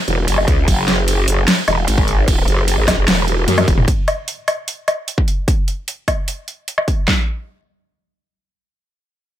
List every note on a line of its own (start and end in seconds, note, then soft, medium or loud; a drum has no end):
0.08 0.26 E1 loud
0.08 closed hi-hat soft
0.28 0.46 F#1 medium
0.28 closed hi-hat medium
0.28 crash soft
0.38 low woodblock medium
0.48 0.66 C#2 loud
0.48 kick loud
0.48 closed hi-hat medium
0.68 1.26 F#1 loud
0.68 kick loud
0.68 closed hi-hat medium
0.68 crash medium
0.88 snare medium
0.88 closed hi-hat medium
1.08 closed hi-hat medium
1.08 crash soft
1.28 1.46 F#1 loud
1.28 open hi-hat loud
1.48 snare loud
1.48 closed hi-hat medium
1.48 crash medium
1.68 1.86 E1 loud
1.68 closed hi-hat medium
1.68 low woodblock medium
1.88 2.46 G#1 loud
1.88 closed hi-hat medium
1.88 crash soft
1.98 kick loud
2.08 closed hi-hat medium
2.28 kick loud
2.28 closed hi-hat medium
2.28 crash medium
2.48 2.76 F#1 loud
2.48 closed hi-hat medium
2.68 closed hi-hat medium
2.68 crash soft
2.78 2.96 G#1 loud
2.88 kick medium
2.88 snare medium
2.88 open hi-hat loud
2.88 low woodblock medium
2.98 3.06 F#1 loud
3.08 3.46 E1 loud
3.08 snare loud
3.08 closed hi-hat medium
3.08 crash medium
3.28 closed hi-hat medium
3.48 3.66 F#2 loud
3.48 closed hi-hat medium
3.48 high tom medium
3.48 crash soft
3.58 closed hi-hat soft
3.58 high tom medium
3.58 low woodblock medium
3.68 3.86 E1 loud
3.68 kick loud
3.68 closed hi-hat medium
3.78 mid tom medium
3.88 kick loud
3.88 closed hi-hat medium
4.08 closed hi-hat medium
4.08 low woodblock medium
4.28 closed hi-hat medium
4.48 closed hi-hat medium
4.48 low woodblock soft
4.68 closed hi-hat medium
4.88 closed hi-hat soft
4.88 low woodblock medium
5.08 closed hi-hat medium
5.18 kick loud
5.28 closed hi-hat medium
5.48 kick loud
5.48 closed hi-hat medium
5.68 closed hi-hat medium
5.88 closed hi-hat medium
6.08 kick medium
6.08 closed hi-hat medium
6.08 low woodblock soft
6.28 closed hi-hat medium
6.48 closed hi-hat medium
6.68 closed hi-hat medium
6.78 low woodblock medium
6.88 kick loud
6.88 closed hi-hat medium
7.08 kick loud
7.08 snare loud